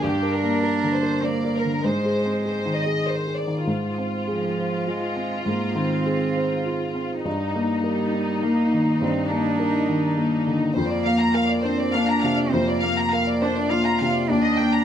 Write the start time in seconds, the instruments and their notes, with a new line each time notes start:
0.03 felt piano G2, cello D4, violin section G4
0.23 felt piano A#4
0.34 violin section A#4
0.43 felt piano A#3
0.63 felt piano A#4, violin section A#4
0.83 felt piano D3
0.94 violin section C5
1.03 felt piano A#4
1.23 cello A#3, felt piano C5, violin section D5
1.45 felt piano A#4
1.57 violin section A#4
1.65 felt piano D3
1.84 felt piano G#2, cello G#3, violin section C5
2.05 felt piano G#4
2.25 felt piano C4
2.45 felt piano G#4, violin section C5
2.66 felt piano D#3
2.78 violin section D#5
2.86 felt piano G#4
3.06 felt piano A#4, violin section C5
3.27 felt piano G#4
3.38 violin section D5
3.47 felt piano D#3
3.67 felt piano G#2, violin section F4
3.98 felt piano C4
4.28 cello F3, felt piano G#4
4.57 felt piano C5
4.87 cello G#3, felt piano F4
5.16 felt piano C4
5.46 felt piano G#2, cello A#3
5.75 felt piano D#3, cello C4
6.06 felt piano G#4
6.36 felt piano C5
6.65 felt piano F4
6.95 felt piano C4
7.25 felt piano G2, violin section D#4
7.55 felt piano A#3
7.84 cello G3, felt piano A#4
8.14 felt piano D#4
8.43 felt piano A#3, cello A#3
8.73 felt piano D#3
9.01 felt piano G2, cello C4
9.31 felt piano A#3, cello D4
9.60 felt piano A#4
9.88 felt piano D#3
10.17 felt piano A#3
10.47 felt piano D3
10.76 felt piano F2, cello A#3, violin section C5
10.90 violin section D5
11.05 felt piano A#3, violin section F5
11.21 violin section A#5
11.34 felt piano A#4, violin section F5
11.50 violin section D5
11.65 cello C4, felt piano D4, violin section C5
11.80 violin section D5
11.94 felt piano A#3, cello D4, violin section F5
12.09 violin section A#5
12.23 felt piano C3, violin section F5
12.37 violin section D5
12.52 felt piano F2, cello A#3, violin section C5
12.69 violin section D5
12.83 felt piano A#3, violin section F5
12.99 violin section A#5
13.13 felt piano A#4, violin section F5
13.28 violin section D5
13.42 felt piano D4, cello D4, violin section C5
13.58 violin section D5
13.71 felt piano A#3, cello F4, violin section F5
13.86 violin section A#5
14.01 felt piano C3, violin section F5
14.14 violin section D5
14.28 felt piano D#2, cello D4, violin section D5
14.43 violin section D#5
14.59 felt piano A#3, violin section G5
14.73 violin section A#5